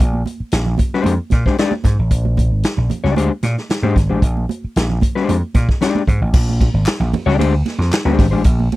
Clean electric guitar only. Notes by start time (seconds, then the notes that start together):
0.94 G#3 D4 G4 C5
1.46 G#3 D4 G4 C5
1.59 G#3 D4 G4 D5
3.04 G#3 D4 G4 D5
3.16 G#3 D4 G4 C5
3.83 G#3 D4 G4 C5
4.09 G#3 D4 G4 C5
5.15 G#3 D4 G4 C5
5.81 G#3 D4 G4 D5
7.26 G#3 D4 G4 D5
7.38 G#3 D4 G4 C5
8.05 G#3 D4 G4 C5
8.31 G#3 D4 G4 C5